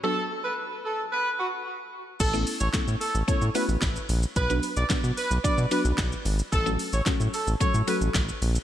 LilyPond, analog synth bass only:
\new Staff \with { instrumentName = "Analog synth bass" } { \clef bass \time 4/4 \key a \major \tempo 4 = 111 r1 | a,,8. a,,16 a,16 a,16 r16 a,,16 a,16 a,16 r16 a,,16 a,,8 bes,,8 | b,,8. b,,16 b,16 b,16 r16 b,,16 b,16 b,16 r16 b,,16 b,,8 gis,,8 | a,,8. a,,16 a,16 a,16 r16 a,,16 a,16 a,16 r16 a,,16 a,,8 bes,,8 | }